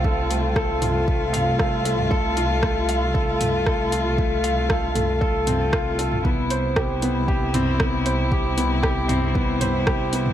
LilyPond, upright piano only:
\new Staff \with { instrumentName = "Upright piano" } { \time 4/4 \key f \lydian \tempo 4 = 116 a'8 a8 a'8 f'8 a8 f''8 a'8 a8 | a'8 f'8 a8 f''8 a'8 a8 a'8 f'8 | a8 f''8 a'8 a8 a'8 c'8 f'8 a'8 | b8 c''8 g'8 b8 g'8 c'8 b8 c''8 |
g'8 b8 g'8 c'8 b8 c''8 g'8 b8 | }